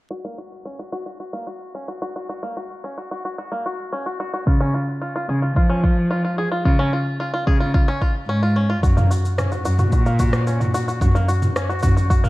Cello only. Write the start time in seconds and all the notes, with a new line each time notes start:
4.47 C#3
5.28 C#3
5.56 F3
6.65 C#3
7.47 C#3
8.29 G#2
8.83 F#2
9.65 F#2
9.92 A#2
11.01 F#2
11.83 F#2